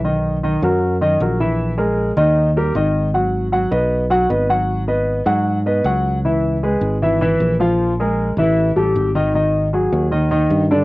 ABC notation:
X:1
M:4/4
L:1/8
Q:1/4=155
K:G#m
V:1 name="Grand piano"
[D,Dd]2 [D,Dd] [F,FA]2 [D,Dd] [F,FA] [E,Ee]- | [E,Ee] [G,GA]2 [D,Dd]2 [=G,=GA] [D,Dd]2 | [F,Ff]2 [F,Ff] [B,Bd]2 [F,Ff] [B,Bd] [F,Ff]- | [F,Ff] [B,Bd]2 [F,Ff]2 [B,Bd] [F,Ff]2 |
[K:C#m] [E,Ee]2 [G,GB]2 [E,Ee] [E,Ee]2 [^E,^E^e]- | [^E,^E^e] [G,G^A]2 [=E,=E=e]2 [=G,=G=A]2 [D,Dd] | [D,Dd]2 [F,FG]2 [D,Dd] [D,Dd]2 [=D,=D=d] |]
V:2 name="Fingered electric bass" clef=bass
B,,,3 F,,3 A,,,2- | A,,,3 D,,3 G,,,2- | G,,,3 B,,,3 G,,,2- | G,,,3 G,,3 C,,2- |
[K:C#m] C,,3 G,,,3 ^A,,,2- | ^A,,,3 =A,,,2 A,,, G,,,2- | G,,,3 D,,3 =G,,2 |]